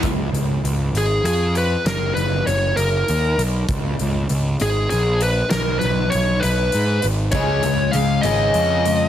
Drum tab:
HH |xxxxxx|xxxxxx|xxxxxx|xxxxxx|
SD |------|o-----|------|o-----|
BD |o-----|------|o-----|------|

HH |xxxxxx|
SD |------|
BD |o-----|